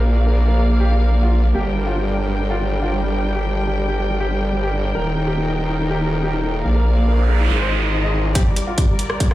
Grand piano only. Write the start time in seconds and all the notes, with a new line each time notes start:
0.05 A#3
0.16 A#3
0.27 A#4
0.37 A#3
0.48 A#4
0.59 A#3
0.69 A#3
0.80 G4
0.90 A#3
1.01 A#3
1.12 A#3
1.23 F4
1.33 A#3
1.44 A#3
1.54 G4
1.65 G3
1.76 G3
1.86 F4
1.97 G3
2.08 G3
2.29 G3
2.39 G3
2.50 F4
2.61 G3
2.71 G3
2.82 F4
2.93 G3
3.03 G3
3.25 G3
3.35 G4
3.46 G3
3.56 G3
3.67 G4
3.78 G3
3.88 G4
3.99 G3
4.10 G3
4.20 G4
4.31 G3
4.42 G3
4.52 G3
4.63 G4
4.73 G3
4.84 G3
4.95 A#4
5.05 D#4
5.16 D#4
5.27 G4
5.37 D#4
5.48 D#4
5.69 D#4
5.80 D#4
5.91 G4
6.01 D#4
6.12 D#4
6.22 G4
6.33 D#4
6.44 D#4
6.65 A#3
6.76 A#4
6.86 A#3
6.97 A#3
7.08 A#4
7.18 A#3
7.29 A#4
7.40 D#4
7.50 D#4
7.61 C5
7.71 D#4
7.82 D#4
7.93 D#4
8.03 D#5
8.14 D#4
8.25 D#4
8.35 G4
8.46 G3
8.57 G3
8.67 F4
8.78 G3
8.88 G3
9.10 G3
9.20 G3
9.31 F4